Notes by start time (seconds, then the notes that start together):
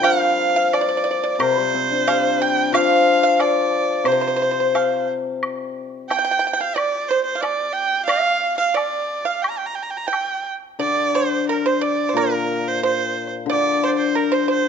Already playing: G3 G4 A#4
0.01 F3 F5, high woodblock
0.56 F5
0.73 D5, high woodblock, low woodblock
0.81 D5
0.89 D5
0.97 D5
1.04 D5
1.11 D5
1.24 D5
1.34 D5
1.39 C3 A#4 C5, high woodblock
1.57 G3 C5
1.74 C4
1.91 D4
2.07 G4 F5, high woodblock, low woodblock
2.42 G5
2.73 F3 F5, high woodblock
3.23 F5
3.40 D5, high woodblock, low woodblock
3.80 C5
4.04 C3 C5, high woodblock
4.12 C5
4.21 C5
4.27 C5
4.36 C5
4.42 C5
4.51 C5
4.60 C5
4.75 F5, high woodblock, low woodblock
5.43 high woodblock
6.10 G5, high woodblock, low woodblock
6.19 G5
6.25 G5
6.31 G5
6.39 G5
6.47 G5
6.53 G5
6.60 F5 G5
6.76 D5, high woodblock
7.09 C5
7.24 C5
7.35 F5
7.41 D5, high woodblock, low woodblock
7.73 G5
8.06 F5, high woodblock
8.58 F5
8.74 D5, high woodblock, low woodblock
9.25 F5
9.42 G5, high woodblock
9.50 A#5
9.58 G5
9.66 A#5
9.75 G5
9.82 A#5
9.91 G5
9.97 A#5
10.07 G5
10.13 high woodblock, low woodblock
10.79 D3 D5
11.14 C5
11.49 A#4
11.66 C5
11.81 D5
12.09 C5
12.14 A#2 A#4
12.68 C5
12.83 C5
13.46 D3 D5
13.51 D5
13.84 C5
13.88 D5
13.97 C5
14.15 A#4
14.32 C5
14.48 C5